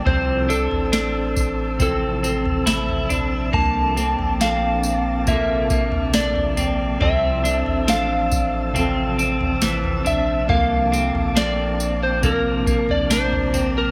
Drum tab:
TB |--x-x-x-x-x-x-x-|--x-x-x-x-x-x-x-|--x-x-x-x-x-x-x-|--x-x-x-x-x-x-x-|
SD |----o-------o---|----o-------o---|----o-------o---|----o-------o---|
FT |o--o----o--o-oo-|o--o----o--o-oo-|o--o----o--o-oo-|o--o----o--o-oo-|
BD |o-----o-o-------|o-------o-o-----|o-----o---------|o-------o-o-----|